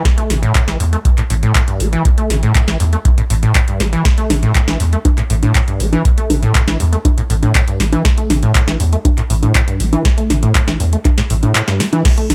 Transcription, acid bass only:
0.05 A2
0.18 A3
0.30 C3
0.43 A2
0.55 A2
0.68 E3
0.80 G2
0.93 A3
1.05 G2
1.18 A2
1.30 A2
1.43 A2
1.55 A2
1.68 G2
1.80 A3
1.93 E3
2.05 A2
2.18 A3
2.30 C3
2.43 A2
2.55 A2
2.68 E3
2.80 G2
2.93 A3
3.05 G2
3.18 A2
3.30 A2
3.43 A2
3.55 A2
3.68 G2
3.80 A3
3.93 E3
4.05 A2
4.18 A3
4.30 C3
4.43 A2
4.55 A2
4.68 E3
4.80 G2
4.93 A3
5.05 G2
5.18 A2
5.30 A2
5.43 A2
5.55 A2
5.68 G2
5.80 A3
5.93 E3
6.05 A2
6.18 A3
6.30 C3
6.43 A2
6.55 A2
6.68 E3
6.80 G2
6.93 A3
7.05 G2
7.18 A2
7.30 A2
7.43 A2
7.55 A2
7.68 G2
7.80 A3
7.93 E3
8.05 A2
8.18 A3
8.30 C3
8.43 A2
8.55 A2
8.68 E3
8.80 G2
8.93 A3
9.05 G2
9.18 A2
9.30 A2
9.43 A2
9.68 G2
9.80 A3
9.93 E3
10.05 A2
10.18 A3
10.30 C3
10.43 A2
10.55 A2
10.68 E3
10.80 G2
10.93 A3
11.05 G2
11.18 A2
11.30 A2
11.43 A2
11.55 A2
11.68 G2
11.80 A3
11.93 E3
12.05 A2
12.18 A3
12.30 C3

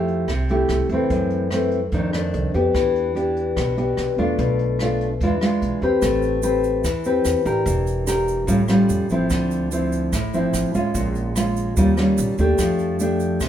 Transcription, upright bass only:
Already playing: F2
0.28 C2
0.69 C2
0.89 E2
1.10 F#2
1.92 F2
2.34 C2
2.54 F2
2.75 E2
3.57 B1
3.98 B1
4.18 E2
4.39 B1
5.21 E2
5.62 B1
5.82 E2
6.02 A1
6.84 E2
7.25 E2
7.46 A1
7.66 E1
8.48 A1
8.90 F2
9.11 A1
9.30 D2
10.13 A1
10.54 A1
10.75 D2
10.95 A#1
11.77 D#2
12.18 A#1
12.38 D#2
12.59 F2
13.40 C2

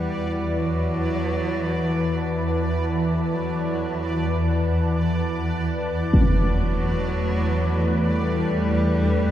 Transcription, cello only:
Already playing: G3
0.57 F#3
1.94 E3
2.40 E3
3.33 F#3
4.26 E3
6.17 F#3
8.04 G3

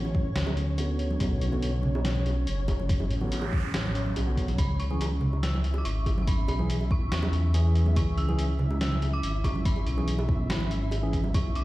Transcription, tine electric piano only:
0.78 D3 B3 F#4
1.53 D3 B3 F#4
3.21 D3 B3 F#4
4.27 D3 B3 F#4
4.91 E3 C#4 G#4
6.60 E3 C#4 G#4
7.54 E3 C#4 G#4
8.29 E3 C#4 G#4
9.98 E3 C#4 G#4
11.03 E3 C#4 G#4

